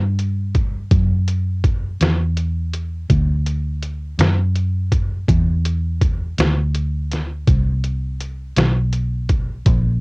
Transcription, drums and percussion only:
0.19 closed hi-hat
0.55 kick, closed hi-hat
0.91 kick, closed hi-hat
1.28 closed hi-hat
1.64 kick, closed hi-hat
2.01 snare, closed hi-hat
2.37 closed hi-hat
2.73 closed hi-hat
3.10 kick, closed hi-hat
3.46 closed hi-hat
3.82 closed hi-hat
4.19 snare, closed hi-hat
4.56 closed hi-hat
4.92 kick, closed hi-hat
5.28 kick, closed hi-hat
5.65 closed hi-hat
6.01 kick, closed hi-hat
6.38 snare, closed hi-hat
6.75 closed hi-hat
7.12 snare, closed hi-hat
7.47 kick, closed hi-hat
7.84 closed hi-hat
8.21 closed hi-hat
8.57 snare, closed hi-hat
8.93 closed hi-hat
9.29 kick, closed hi-hat
9.66 kick, closed hi-hat

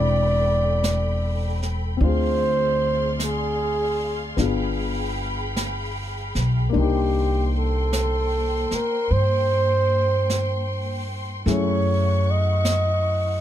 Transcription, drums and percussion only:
0.84 brush sweep, snare, hi-hat pedal
1.62 snare
2.01 brush sweep
3.20 brush sweep, snare, hi-hat pedal
4.38 brush sweep, snare
5.56 brush sweep, snare, hi-hat pedal
6.35 snare
6.74 brush sweep
7.93 brush sweep, snare, hi-hat pedal
8.71 snare
9.11 brush sweep
10.30 brush sweep, snare, hi-hat pedal
11.47 brush sweep, snare
12.65 brush sweep, snare, hi-hat pedal

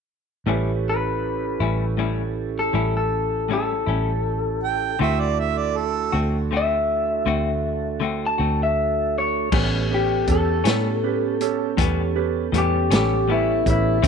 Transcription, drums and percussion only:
9.52 kick, crash
10.27 kick, closed hi-hat
10.65 snare, closed hi-hat
11.41 closed hi-hat
11.78 kick, closed hi-hat
12.54 closed hi-hat
12.91 snare, closed hi-hat
13.66 kick, closed hi-hat
14.04 kick, closed hi-hat

